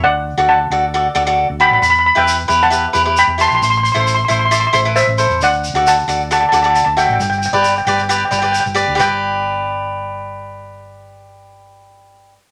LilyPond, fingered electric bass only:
\new Staff \with { instrumentName = "Fingered electric bass" } { \clef bass \time 4/4 \key g \major \tempo 4 = 134 d,8. d,8. d,4 d,8. d,8 a,,16 | e,8. e,8. e,4 e,8. e,8 bes,,16 | a,,8. a,,8. a,,4 a,,8. a,,8 e,16 | d,8. d,8. d,4 d,8. d,8 a,,16 |
g,,8. g,,8. g,,4 g,,8. g,,8 d,16 | g,,1~ | g,,1 | }